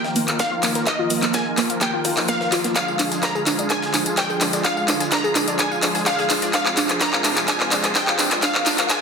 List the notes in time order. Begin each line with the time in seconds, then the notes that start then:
Already playing: D#3 F3 A#3 F4 A#4 G5
0.04 D#5, snare
0.16 A#3, open hi-hat, shaker
0.28 F5, clap, closed hi-hat
0.39 A#3 F5, kick, snare, closed hi-hat, shaker
0.52 F4
0.63 A#3, clap, open hi-hat, shaker
0.75 A#4, snare, closed hi-hat
0.87 A#3 D#5, kick, clap, closed hi-hat, shaker
0.99 F4
1.10 A#3, open hi-hat, shaker
1.22 A#3, snare, clap, closed hi-hat
1.34 A#3 G#5, kick, snare, closed hi-hat, shaker
1.46 D#5
1.58 A#3, clap, open hi-hat, shaker
1.70 F5, closed hi-hat
1.81 A#3 G5, kick, clap, closed hi-hat, shaker
1.93 F4
2.05 F4, kick, open hi-hat, shaker
2.17 D#4, snare, clap, open hi-hat
2.28 A#3 F5, kick, snare, closed hi-hat, shaker
2.41 A#4, snare
2.52 F4, clap, open hi-hat
2.64 A#3, snare, closed hi-hat
2.76 D3 G#3 D4 G#4 F5, kick, clap, closed hi-hat, tambourine, shaker
2.88 F5, tambourine
2.99 D4, clap, open hi-hat, tambourine, shaker
3.12 G#5, snare, closed hi-hat, tambourine
3.23 D4 A#5, kick, snare, clap, closed hi-hat, tambourine, shaker
3.35 G#4, tambourine
3.47 D4, clap, open hi-hat, tambourine, shaker
3.59 D5, closed hi-hat, tambourine
3.70 D4 G#5, kick, clap, closed hi-hat, tambourine, shaker
3.82 F5, snare, tambourine
3.94 D4, clap, open hi-hat, tambourine, shaker
4.06 G#5, closed hi-hat, tambourine
4.17 D4 G5, kick, snare, clap, closed hi-hat, tambourine, shaker
4.30 G#4, tambourine
4.41 D4, clap, open hi-hat, tambourine, shaker
4.53 D5, snare, closed hi-hat, tambourine
4.65 D4 F5, kick, clap, closed hi-hat, tambourine, shaker
4.77 F5, tambourine
4.88 D4, clap, open hi-hat, tambourine, shaker
5.00 G#5, snare, closed hi-hat, tambourine
5.12 D4 A#5, kick, snare, clap, closed hi-hat, tambourine, shaker
5.24 G#4, tambourine
5.35 D4, clap, open hi-hat, tambourine, shaker
5.48 D5, closed hi-hat, tambourine
5.59 D4 G#5, kick, clap, closed hi-hat, tambourine, shaker
5.71 F5, tambourine
5.83 D4, kick, clap, open hi-hat, tambourine, shaker
5.95 G#5, snare, open hi-hat, tambourine
6.06 D4 F5, kick, snare, clap, closed hi-hat, tambourine, shaker
6.19 G#4, snare, tambourine
6.30 D4, clap, open hi-hat, tambourine
6.42 D5, snare, closed hi-hat, tambourine
6.54 C3 F3 G#3 D4 F4 F5, kick, clap, closed hi-hat, tambourine, shaker
6.66 F5, clap, tambourine
6.77 D4, clap, open hi-hat, tambourine, shaker
6.89 G#5, snare, clap, closed hi-hat, tambourine
7.01 D4 A#5, kick, snare, clap, closed hi-hat, tambourine, shaker
7.13 F5, clap, tambourine
7.24 D4, clap, open hi-hat, tambourine, shaker
7.37 G#5, clap, closed hi-hat, tambourine
7.48 D4 G#5, kick, clap, closed hi-hat, tambourine, shaker
7.60 F5, snare, clap, tambourine
7.72 D4, clap, open hi-hat, tambourine, shaker
7.84 G#5, clap, closed hi-hat, tambourine
7.95 D4 G5, kick, snare, clap, closed hi-hat, tambourine, shaker
8.08 F5, clap, tambourine
8.19 D4, clap, open hi-hat, tambourine, shaker
8.31 G#5, snare, clap, closed hi-hat, tambourine
8.43 D4 A#4 F5, kick, clap, closed hi-hat, tambourine, shaker
8.55 F5, clap, tambourine
8.66 D4, clap, open hi-hat, tambourine, shaker
8.78 F5, snare, clap, closed hi-hat, tambourine
8.90 D4 G#5, kick, snare, clap, closed hi-hat, tambourine, shaker